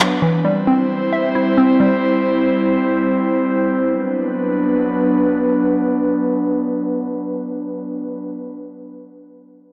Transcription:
0, 0, Header, 1, 5, 480
1, 0, Start_track
1, 0, Tempo, 500000
1, 9336, End_track
2, 0, Start_track
2, 0, Title_t, "Analog synth pad"
2, 0, Program_c, 0, 89
2, 0, Note_on_c, 0, 54, 82
2, 0, Note_on_c, 0, 59, 74
2, 0, Note_on_c, 0, 62, 74
2, 0, Note_on_c, 0, 71, 91
2, 180, Note_off_c, 0, 59, 0
2, 180, Note_off_c, 0, 62, 0
2, 181, Note_off_c, 0, 54, 0
2, 181, Note_off_c, 0, 71, 0
2, 215, Note_on_c, 0, 55, 80
2, 215, Note_on_c, 0, 64, 74
2, 216, Note_on_c, 0, 60, 72
2, 216, Note_on_c, 0, 72, 87
2, 3645, Note_off_c, 0, 55, 0
2, 3645, Note_off_c, 0, 60, 0
2, 3645, Note_off_c, 0, 64, 0
2, 3645, Note_off_c, 0, 72, 0
2, 3680, Note_on_c, 0, 59, 73
2, 3681, Note_on_c, 0, 62, 73
2, 3682, Note_on_c, 0, 54, 81
2, 3682, Note_on_c, 0, 71, 89
2, 7874, Note_off_c, 0, 54, 0
2, 7874, Note_off_c, 0, 59, 0
2, 7874, Note_off_c, 0, 62, 0
2, 7874, Note_off_c, 0, 71, 0
2, 9336, End_track
3, 0, Start_track
3, 0, Title_t, "Synth pluck"
3, 0, Program_c, 1, 84
3, 0, Note_on_c, 1, 54, 75
3, 0, Note_on_c, 1, 59, 100
3, 0, Note_on_c, 1, 62, 72
3, 0, Note_on_c, 1, 74, 89
3, 212, Note_on_c, 1, 52, 87
3, 213, Note_off_c, 1, 54, 0
3, 213, Note_off_c, 1, 62, 0
3, 214, Note_off_c, 1, 59, 0
3, 214, Note_off_c, 1, 74, 0
3, 429, Note_on_c, 1, 55, 83
3, 647, Note_on_c, 1, 60, 82
3, 1081, Note_on_c, 1, 76, 81
3, 1296, Note_off_c, 1, 52, 0
3, 1298, Note_on_c, 1, 64, 75
3, 1501, Note_off_c, 1, 60, 0
3, 1512, Note_off_c, 1, 55, 0
3, 1513, Note_on_c, 1, 60, 88
3, 1728, Note_on_c, 1, 55, 78
3, 2163, Note_off_c, 1, 76, 0
3, 2380, Note_off_c, 1, 64, 0
3, 2596, Note_off_c, 1, 60, 0
3, 2812, Note_off_c, 1, 55, 0
3, 9336, End_track
4, 0, Start_track
4, 0, Title_t, "Downlifter"
4, 0, Program_c, 2, 103
4, 0, Note_on_c, 2, 60, 87
4, 214, Note_off_c, 2, 60, 0
4, 9336, End_track
5, 0, Start_track
5, 0, Title_t, "Drums"
5, 0, Note_on_c, 9, 39, 95
5, 0, Note_on_c, 9, 42, 73
5, 94, Note_off_c, 9, 39, 0
5, 94, Note_off_c, 9, 42, 0
5, 9336, End_track
0, 0, End_of_file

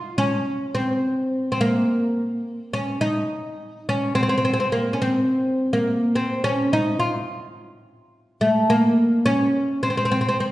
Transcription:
0, 0, Header, 1, 2, 480
1, 0, Start_track
1, 0, Tempo, 569260
1, 613, Time_signature, 4, 2, 24, 8
1, 8868, End_track
2, 0, Start_track
2, 0, Title_t, "Oud"
2, 0, Program_c, 0, 24
2, 0, Note_on_c, 0, 65, 100
2, 148, Note_off_c, 0, 65, 0
2, 151, Note_on_c, 0, 61, 92
2, 629, Note_on_c, 0, 60, 80
2, 636, Note_off_c, 0, 61, 0
2, 1270, Note_off_c, 0, 60, 0
2, 1280, Note_on_c, 0, 60, 61
2, 1336, Note_off_c, 0, 60, 0
2, 1355, Note_on_c, 0, 58, 87
2, 2305, Note_on_c, 0, 61, 79
2, 2330, Note_off_c, 0, 58, 0
2, 2534, Note_off_c, 0, 61, 0
2, 2538, Note_on_c, 0, 63, 85
2, 3275, Note_off_c, 0, 63, 0
2, 3279, Note_on_c, 0, 61, 86
2, 3496, Note_off_c, 0, 61, 0
2, 3500, Note_on_c, 0, 60, 85
2, 3554, Note_off_c, 0, 60, 0
2, 3564, Note_on_c, 0, 60, 63
2, 3609, Note_off_c, 0, 60, 0
2, 3619, Note_on_c, 0, 60, 66
2, 3677, Note_off_c, 0, 60, 0
2, 3690, Note_on_c, 0, 60, 60
2, 3739, Note_off_c, 0, 60, 0
2, 3749, Note_on_c, 0, 60, 69
2, 3806, Note_off_c, 0, 60, 0
2, 3824, Note_on_c, 0, 60, 63
2, 3868, Note_off_c, 0, 60, 0
2, 3878, Note_on_c, 0, 60, 63
2, 3934, Note_off_c, 0, 60, 0
2, 3982, Note_on_c, 0, 58, 75
2, 4159, Note_on_c, 0, 61, 58
2, 4161, Note_off_c, 0, 58, 0
2, 4214, Note_off_c, 0, 61, 0
2, 4230, Note_on_c, 0, 60, 72
2, 4828, Note_off_c, 0, 60, 0
2, 4832, Note_on_c, 0, 58, 70
2, 5190, Note_off_c, 0, 58, 0
2, 5190, Note_on_c, 0, 60, 76
2, 5426, Note_off_c, 0, 60, 0
2, 5430, Note_on_c, 0, 61, 88
2, 5666, Note_off_c, 0, 61, 0
2, 5675, Note_on_c, 0, 63, 82
2, 5895, Note_off_c, 0, 63, 0
2, 5898, Note_on_c, 0, 65, 70
2, 6228, Note_off_c, 0, 65, 0
2, 7091, Note_on_c, 0, 57, 74
2, 7331, Note_off_c, 0, 57, 0
2, 7334, Note_on_c, 0, 58, 89
2, 7805, Note_on_c, 0, 61, 93
2, 7826, Note_off_c, 0, 58, 0
2, 8284, Note_off_c, 0, 61, 0
2, 8287, Note_on_c, 0, 60, 77
2, 8338, Note_off_c, 0, 60, 0
2, 8348, Note_on_c, 0, 60, 57
2, 8400, Note_off_c, 0, 60, 0
2, 8410, Note_on_c, 0, 60, 64
2, 8466, Note_off_c, 0, 60, 0
2, 8476, Note_on_c, 0, 60, 65
2, 8519, Note_off_c, 0, 60, 0
2, 8529, Note_on_c, 0, 60, 72
2, 8598, Note_off_c, 0, 60, 0
2, 8608, Note_on_c, 0, 60, 60
2, 8662, Note_off_c, 0, 60, 0
2, 8673, Note_on_c, 0, 60, 69
2, 8738, Note_off_c, 0, 60, 0
2, 8772, Note_on_c, 0, 60, 65
2, 8868, Note_off_c, 0, 60, 0
2, 8868, End_track
0, 0, End_of_file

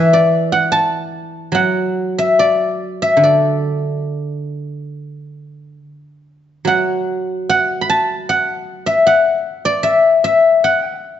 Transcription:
0, 0, Header, 1, 2, 480
1, 0, Start_track
1, 0, Tempo, 795756
1, 929, Tempo, 833333
1, 1887, Time_signature, 4, 2, 24, 8
1, 2849, Tempo, 898204
1, 3809, Tempo, 823045
1, 4289, Tempo, 787402
1, 5729, Tempo, 758534
1, 6579, End_track
2, 0, Start_track
2, 0, Title_t, "Guzheng"
2, 0, Program_c, 0, 107
2, 0, Note_on_c, 0, 52, 57
2, 0, Note_on_c, 0, 59, 27
2, 0, Note_on_c, 0, 62, 33
2, 0, Note_on_c, 0, 64, 37
2, 0, Note_on_c, 0, 76, 88
2, 80, Note_on_c, 0, 74, 70
2, 86, Note_off_c, 0, 64, 0
2, 178, Note_off_c, 0, 62, 0
2, 315, Note_on_c, 0, 78, 82
2, 343, Note_off_c, 0, 59, 0
2, 433, Note_on_c, 0, 81, 89
2, 916, Note_on_c, 0, 54, 52
2, 931, Note_off_c, 0, 78, 0
2, 933, Note_on_c, 0, 78, 70
2, 1001, Note_off_c, 0, 76, 0
2, 1182, Note_off_c, 0, 74, 0
2, 1289, Note_off_c, 0, 81, 0
2, 1300, Note_on_c, 0, 76, 72
2, 1396, Note_off_c, 0, 52, 0
2, 1420, Note_on_c, 0, 74, 75
2, 1780, Note_off_c, 0, 76, 0
2, 1782, Note_on_c, 0, 76, 72
2, 1857, Note_off_c, 0, 78, 0
2, 1866, Note_on_c, 0, 50, 49
2, 1903, Note_off_c, 0, 74, 0
2, 1906, Note_on_c, 0, 74, 64
2, 2361, Note_off_c, 0, 54, 0
2, 2773, Note_off_c, 0, 76, 0
2, 3320, Note_off_c, 0, 74, 0
2, 3323, Note_off_c, 0, 50, 0
2, 3797, Note_on_c, 0, 54, 46
2, 3811, Note_on_c, 0, 78, 78
2, 4288, Note_off_c, 0, 78, 0
2, 4290, Note_on_c, 0, 78, 86
2, 4484, Note_on_c, 0, 83, 60
2, 4534, Note_on_c, 0, 81, 82
2, 4773, Note_off_c, 0, 78, 0
2, 4776, Note_on_c, 0, 78, 84
2, 5125, Note_on_c, 0, 76, 74
2, 5242, Note_off_c, 0, 54, 0
2, 5245, Note_off_c, 0, 78, 0
2, 5248, Note_on_c, 0, 78, 86
2, 5307, Note_off_c, 0, 83, 0
2, 5417, Note_off_c, 0, 81, 0
2, 5605, Note_on_c, 0, 74, 83
2, 5712, Note_off_c, 0, 76, 0
2, 5715, Note_on_c, 0, 76, 88
2, 5971, Note_off_c, 0, 76, 0
2, 5973, Note_on_c, 0, 76, 81
2, 6223, Note_off_c, 0, 78, 0
2, 6226, Note_on_c, 0, 78, 83
2, 6574, Note_off_c, 0, 74, 0
2, 6579, Note_off_c, 0, 76, 0
2, 6579, Note_off_c, 0, 78, 0
2, 6579, End_track
0, 0, End_of_file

